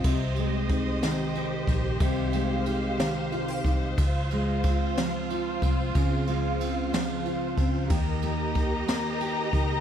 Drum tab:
RD |xxxxxx|xxxxxx|xxxxxx|xxxxxx|
SD |---o--|---o--|---o--|---o--|
BD |o-o--o|o----o|o-o--o|o----o|

RD |xxxxxx|
SD |---o--|
BD |o-o--o|